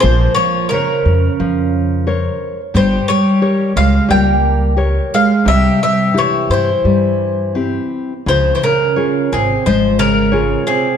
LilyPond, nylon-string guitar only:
\new Staff \with { instrumentName = "Nylon-string guitar" } { \time 4/4 \key c \phrygian \tempo 4 = 88 bes4 <bes' c'' des''>4 f4 <bes' c'' des''>4 | g4 <g' bes' des''>4 g4 <g' bes' des''>4 | c4 <c e' g'>4 g4 <c' e' g'>4 | des4 <f' aes' des''>4 aes4 <f' aes' des''>4 | }